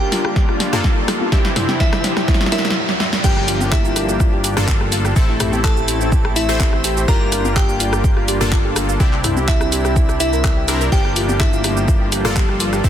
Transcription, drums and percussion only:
0.12 snare, open hi-hat
0.25 cross-stick
0.36 kick, snare
0.49 cross-stick
0.60 snare, open hi-hat
0.73 cross-stick, mid tom
0.84 kick, snare, high conga
1.08 cross-stick, snare, open hi-hat
1.21 high conga
1.32 kick, cross-stick, snare
1.45 snare
1.56 cross-stick, snare, mid tom, open hi-hat
1.69 snare, high conga
1.80 kick, snare
1.93 cross-stick, snare
2.04 snare, open hi-hat
2.17 cross-stick, snare
2.28 kick, snare
2.34 snare
2.41 cross-stick, snare
2.46 snare
2.52 snare, open hi-hat
2.58 snare
2.65 snare
2.70 snare
2.89 snare
3.00 snare
3.13 snare
3.24 kick, crash, shaker
3.37 cross-stick
3.48 open hi-hat, shaker
3.61 high conga, shaker
3.72 kick, cross-stick, clap, shaker
3.85 shaker
3.96 cross-stick, open hi-hat, shaker
4.09 shaker
4.20 kick, cross-stick, shaker
4.44 open hi-hat, shaker
4.57 cross-stick, mid tom, shaker
4.68 kick, clap, high conga, shaker
4.81 cross-stick
4.92 open hi-hat, shaker
5.05 cross-stick, shaker
5.16 kick, shaker
5.40 cross-stick, mid tom, open hi-hat, shaker
5.53 high conga, shaker
5.64 kick, cross-stick, clap, shaker
5.77 shaker
5.88 open hi-hat, shaker
6.01 shaker
6.12 kick, shaker
6.25 cross-stick
6.36 open hi-hat, shaker
6.49 cross-stick, shaker
6.60 kick, clap, high conga, shaker
6.73 cross-stick
6.84 open hi-hat, shaker
6.97 shaker
7.08 kick, cross-stick, shaker
7.32 cross-stick, open hi-hat, shaker
7.45 high conga, shaker
7.56 kick, cross-stick, clap, shaker
7.69 shaker
7.80 open hi-hat, shaker
7.93 cross-stick, shaker
8.04 kick, shaker
8.17 cross-stick
8.28 open hi-hat, shaker
8.41 cross-stick, mid tom, shaker
8.52 kick, clap, high conga, shaker
8.76 cross-stick, open hi-hat, shaker
8.89 shaker
9.00 kick, cross-stick, shaker
9.13 clap
9.24 cross-stick, mid tom, open hi-hat, shaker
9.37 high conga, shaker
9.48 kick, clap, shaker
9.61 cross-stick, shaker
9.72 open hi-hat, shaker
9.85 cross-stick, shaker
9.96 kick, shaker
10.09 cross-stick, shaker
10.20 open hi-hat, shaker
10.33 shaker
10.44 kick, cross-stick, clap, high conga, shaker
10.68 cross-stick, open hi-hat, shaker
10.81 shaker
10.92 kick, shaker
11.05 cross-stick
11.16 open hi-hat, shaker
11.29 high conga, shaker
11.40 kick, cross-stick, clap, shaker
11.53 shaker
11.64 cross-stick, open hi-hat, shaker
11.77 shaker
11.88 kick, cross-stick, shaker
12.12 open hi-hat, shaker
12.25 cross-stick, mid tom, shaker
12.36 kick, clap, high conga, shaker
12.49 cross-stick
12.60 open hi-hat, shaker
12.73 cross-stick, shaker
12.84 kick, shaker

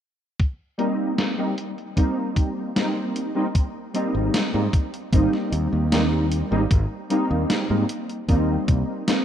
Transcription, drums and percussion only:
0.39 kick, closed hi-hat
0.79 closed hi-hat
1.18 snare, closed hi-hat
1.58 closed hi-hat
1.78 closed hi-hat
1.97 kick, closed hi-hat
2.37 kick, closed hi-hat
2.76 snare, closed hi-hat
3.16 closed hi-hat
3.55 kick, closed hi-hat
3.95 closed hi-hat
4.34 snare, closed hi-hat
4.73 kick, closed hi-hat
4.94 closed hi-hat
5.13 kick, closed hi-hat
5.33 snare
5.53 closed hi-hat
5.92 snare, closed hi-hat
6.31 closed hi-hat
6.71 kick, closed hi-hat
7.10 closed hi-hat
7.50 snare, closed hi-hat
7.89 closed hi-hat
8.09 closed hi-hat
8.29 kick, closed hi-hat
8.68 kick, closed hi-hat
9.08 snare, closed hi-hat

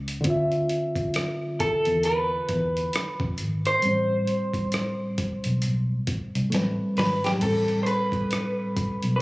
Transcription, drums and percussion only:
0.08 closed hi-hat
0.24 kick, closed hi-hat
0.52 closed hi-hat
0.69 closed hi-hat
0.96 kick, closed hi-hat
1.14 cross-stick, closed hi-hat
1.60 kick, closed hi-hat
1.85 closed hi-hat
2.03 closed hi-hat
2.49 kick, closed hi-hat
2.77 closed hi-hat
2.93 cross-stick, closed hi-hat
3.20 kick
3.38 closed hi-hat
3.65 closed hi-hat
3.82 closed hi-hat
4.27 closed hi-hat
4.54 kick, closed hi-hat
4.72 cross-stick, closed hi-hat
5.18 kick, closed hi-hat
5.44 closed hi-hat
5.62 closed hi-hat
6.07 kick, closed hi-hat
6.35 closed hi-hat
6.52 snare, closed hi-hat
6.97 snare, open hi-hat
7.24 snare, closed hi-hat
7.41 kick, closed hi-hat, crash
7.68 closed hi-hat
7.86 closed hi-hat
8.12 kick, closed hi-hat
8.31 cross-stick, closed hi-hat
8.77 kick, closed hi-hat
9.03 closed hi-hat

